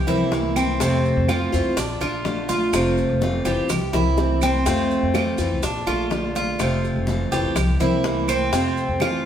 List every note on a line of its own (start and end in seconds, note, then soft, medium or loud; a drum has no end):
0.07 0.77 C2 medium
0.07 0.30 E3 medium
0.07 0.31 A#3 medium
0.07 0.31 C4 medium
0.07 0.31 E4 medium
0.07 0.55 E4 medium
0.07 high conga soft
0.07 low conga medium
0.07 maracas soft
0.31 0.79 E3 soft
0.31 0.79 A#3 medium
0.31 0.80 C4 soft
0.31 0.80 E4 medium
0.31 high bongo medium
0.31 low bongo medium
0.31 high conga medium
0.31 maracas soft
0.56 0.80 C4 medium
0.56 high bongo soft
0.56 high conga loud
0.56 claves medium
0.56 maracas medium
0.80 1.15 F2 medium
0.80 1.28 C3 medium
0.80 1.28 A3 medium
0.80 1.28 C4 medium
0.80 1.28 F4 medium
0.80 high bongo medium
0.80 high conga soft
0.80 maracas medium
1.05 maracas soft
1.17 1.51 F2 medium
1.28 1.52 E3 medium
1.28 1.52 A3 soft
1.28 1.52 C4 medium
1.28 1.76 F4 medium
1.28 1.51 F4 medium
1.28 high bongo medium
1.28 high conga medium
1.28 claves medium
1.28 maracas soft
1.52 1.65 F2 medium
1.52 1.76 E3 medium
1.52 1.76 A3 medium
1.52 1.76 C4 medium
1.52 1.76 F4 medium
1.52 maracas medium
1.66 1.76 F2 medium
1.77 2.00 A#1 loud
1.77 2.00 D4 medium
1.77 muted steel-string acoustic guitar stroke medium
1.77 high bongo medium
1.77 high conga soft
1.77 maracas medium
2.01 2.70 A#1 medium
2.01 2.25 A3 medium
2.01 2.25 D4 medium
2.01 2.24 F4 medium
2.01 2.48 F4 medium
2.01 high conga soft
2.01 claves medium
2.01 maracas soft
2.25 2.72 D3 soft
2.25 2.73 A3 soft
2.25 2.73 D4 medium
2.25 2.73 F4 medium
2.25 high bongo medium
2.25 low bongo medium
2.25 high conga medium
2.25 maracas soft
2.49 2.96 F4 medium
2.49 high conga medium
2.49 maracas medium
2.73 3.08 F1 medium
2.73 3.21 C3 medium
2.73 3.21 A3 medium
2.73 3.21 C4 medium
2.73 3.22 F4 medium
2.73 high bongo medium
2.73 claves medium
2.73 maracas medium
2.97 high bongo soft
2.97 high conga soft
2.97 maracas soft
3.10 3.44 F1 medium
3.21 3.45 E3 soft
3.21 3.45 A3 medium
3.21 3.44 C4 soft
3.21 3.44 F4 medium
3.21 high bongo medium
3.21 high conga loud
3.21 maracas soft
3.45 3.56 F1 medium
3.45 3.69 E3 medium
3.45 3.69 A3 medium
3.45 3.69 C4 medium
3.45 3.69 F4 medium
3.45 3.92 G4 medium
3.45 high bongo soft
3.45 maracas medium
3.57 3.69 A#1 medium
3.69 3.92 C2 medium
3.69 muted steel-string acoustic guitar stroke medium
3.69 high bongo medium
3.69 high conga soft
3.69 low conga medium
3.69 claves medium
3.69 maracas medium
3.93 4.62 C2 medium
3.93 4.16 E3 medium
3.93 4.17 A#3 medium
3.93 4.17 C4 medium
3.93 4.17 E4 medium
3.93 4.41 E4 medium
3.93 high bongo medium
3.93 high conga soft
3.93 low conga medium
3.93 maracas soft
4.17 4.65 E3 soft
4.17 4.65 A#3 soft
4.17 4.66 C4 medium
4.17 4.66 E4 soft
4.17 high bongo medium
4.17 high conga medium
4.17 maracas soft
4.41 4.65 C4 medium
4.41 low bongo medium
4.41 high conga medium
4.41 claves medium
4.41 maracas medium
4.66 5.01 F2 medium
4.66 5.14 C3 medium
4.66 5.14 A3 medium
4.66 5.13 C4 medium
4.66 5.14 C4 medium
4.66 5.15 F4 medium
4.66 high bongo medium
4.66 high conga soft
4.66 maracas medium
4.91 high conga soft
4.91 maracas soft
5.02 5.37 F2 medium
5.14 5.38 E3 soft
5.14 5.38 A3 medium
5.14 5.38 C4 soft
5.14 5.62 F4 medium
5.14 5.37 F4 medium
5.14 high bongo medium
5.14 high conga loud
5.14 claves medium
5.14 maracas soft
5.38 5.50 F2 medium
5.38 5.63 E3 medium
5.38 5.62 A3 medium
5.38 5.62 C4 medium
5.38 5.62 F4 medium
5.38 high conga soft
5.38 maracas medium
5.51 5.63 C2 medium
5.63 5.86 A#1 loud
5.63 5.86 D4 medium
5.63 muted steel-string acoustic guitar stroke medium
5.63 high bongo medium
5.63 high conga soft
5.63 maracas medium
5.87 6.56 A#1 medium
5.87 6.10 A3 medium
5.87 6.10 D4 medium
5.87 6.10 F4 medium
5.87 6.34 F4 medium
5.87 high conga soft
5.87 claves medium
5.87 maracas soft
6.10 6.58 D3 medium
6.10 6.58 A3 soft
6.10 6.59 D4 soft
6.10 6.59 F4 medium
6.10 high bongo medium
6.10 low bongo medium
6.10 high conga medium
6.10 maracas soft
6.35 6.83 F4 medium
6.35 high conga medium
6.35 maracas medium
6.59 6.94 F1 loud
6.59 7.07 C3 medium
6.59 7.07 A3 medium
6.59 7.08 C4 medium
6.59 7.08 F4 medium
6.59 high bongo medium
6.59 high conga soft
6.59 claves medium
6.59 maracas medium
6.83 high bongo soft
6.83 high conga soft
6.83 maracas soft
6.96 7.30 F1 medium
7.07 7.31 E3 medium
7.07 7.31 A3 medium
7.07 7.31 C4 medium
7.07 7.31 F4 medium
7.07 high bongo medium
7.07 high conga medium
7.07 maracas soft
7.31 7.43 F1 medium
7.31 7.55 E3 medium
7.31 7.56 A3 medium
7.31 7.56 C4 medium
7.31 7.55 F4 medium
7.31 7.79 G4 medium
7.31 high bongo soft
7.31 maracas medium
7.43 7.55 A#1 medium
7.55 7.79 C2 loud
7.55 muted steel-string acoustic guitar stroke medium
7.55 high bongo medium
7.55 high conga soft
7.55 low conga medium
7.55 claves medium
7.55 maracas medium
7.79 8.49 C2 medium
7.79 8.03 E3 medium
7.79 8.04 A#3 medium
7.79 8.04 C4 medium
7.79 8.03 E4 medium
7.79 8.27 E4 medium
7.79 high conga soft
7.79 low conga medium
7.79 maracas soft
8.04 8.52 E3 soft
8.04 8.52 A#3 soft
8.04 8.52 C4 medium
8.04 8.53 E4 medium
8.04 high bongo medium
8.04 low bongo medium
8.04 high conga medium
8.04 maracas soft
8.28 8.52 C4 medium
8.28 high bongo soft
8.28 high conga medium
8.28 claves medium
8.28 maracas medium
8.52 8.87 F2 medium
8.52 9.00 C3 medium
8.52 9.01 A3 medium
8.52 9.00 C4 medium
8.52 9.01 C4 medium
8.52 9.01 F4 medium
8.52 high bongo medium
8.52 high conga soft
8.52 maracas medium
8.77 high conga soft
8.77 maracas soft
8.88 9.23 F2 medium
9.00 9.25 E3 medium
9.00 9.25 A3 medium
9.00 9.25 C4 medium
9.00 9.25 F4 medium
9.00 9.24 F4 medium
9.00 high bongo medium
9.00 high conga loud
9.00 claves medium
9.00 maracas soft